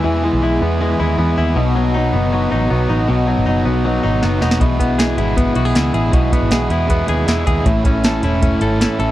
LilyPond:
<<
  \new Staff \with { instrumentName = "Clean electric guitar" } { \time 4/4 \key e \major \tempo 4 = 158 <e gis b e'>8 gis8 e'8 b8 gis8 e'8 b8 e'8 | b,8 fis8 dis'8 b8 fis8 dis'8 b8 dis'8 | b,8 fis8 dis'8 b8 fis8 dis'8 b8 dis'8 | b,8 b8 gis'8 e'8 b8 fis'16 gis'16 e'8 gis'8 |
b,8 b8 gis'8 e'8 b8 gis'8 e'8 gis'8 | a,8 cis'8 a'8 e'8 cis'8 a'8 e'8 a'8 | }
  \new Staff \with { instrumentName = "Overdriven electric guitar" } { \time 4/4 \key e \major <e, b, e b e' gis'>8 <e b e' gis'>8 <e b e' gis'>8 <e b e' gis'>8 <e, b, e b e' gis'>8 <e b e' gis'>8 <e b e' gis'>8 <e b e' gis'>8 | <b, fis b dis' fis'>8 <b dis' fis'>8 <fis b dis' fis'>8 <b dis' fis'>8 <b, fis b dis' fis'>8 <b dis' fis'>8 <fis b dis' fis'>8 <b dis' fis'>8 | <b, fis b dis' fis'>8 <b dis' fis'>8 <fis b dis' fis'>8 <b dis' fis'>8 <b, fis b dis' fis'>8 <b dis' fis'>8 <fis b dis' fis'>8 <b dis' fis'>8 | <b, e gis b e'>8 <gis b e'>8 <e gis b e'>8 <gis b e'>8 <b, e gis b e'>8 <gis b e'>8 <e gis b e'>8 <gis b e'>8 |
<b, e gis b e'>8 <gis b e'>8 <e gis b e'>8 <gis b e'>8 <b, e gis b e'>8 <gis b e'>8 <e gis b e'>8 <gis b e'>8 | <a, e a cis' e'>8 <a cis' e'>8 <e a cis' e'>8 <a cis' e'>8 <a, e a cis' e'>8 <a cis' e'>8 <e a cis' e'>8 <a cis' e'>8 | }
  \new Staff \with { instrumentName = "Picked electric bass" } { \clef bass \time 4/4 \key e \major e,8. b,,16 b,,8 e,4 dis,8 e,8 dis,8 | b,,4. fis,,4 a,,8 b,,8 a,,8 | b,,8. gis,,16 fis,,8 b,,4 gis,,8 fis,,8 e,,8 | b,,4. gis,,4 b,,8 cis,8 a,,8 |
b,,8. gis,,16 b,,8 e,4 dis,8 e,8 dis,8 | a,,4. e,,4 gis,,8. r16 a,,8 | }
  \new DrumStaff \with { instrumentName = "Drums" } \drummode { \time 4/4 r4 r4 r4 r4 | r4 r4 r4 r4 | r4 r4 r4 sn8 sn16 sn16 | <hh bd>8 <hh bd>8 <hh sn>8 hh8 <hh bd>8 hh8 <hh sn>8 hh8 |
<hh bd>8 <hh bd>8 <hh sn>8 hh8 <hh bd>8 hh8 <hh sn>8 <hh bd>8 | <hh bd>8 <hh bd>8 <hh sn>8 hh8 <hh bd>8 hh8 <hh sn>8 hh8 | }
>>